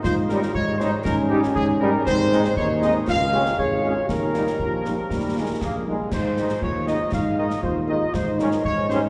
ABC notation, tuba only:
X:1
M:2/4
L:1/8
Q:1/4=118
K:Ab
V:1 name="Tuba" clef=bass
A,,2 A,,2 | A,,2 A,,2 | A,,2 E,,2 | D,,2 A,,,2 |
E,,2 B,,,2 | E,,2 B,,,2 | A,,2 E,,2 | A,,2 E,,2 |
A,,2 A,,2 |]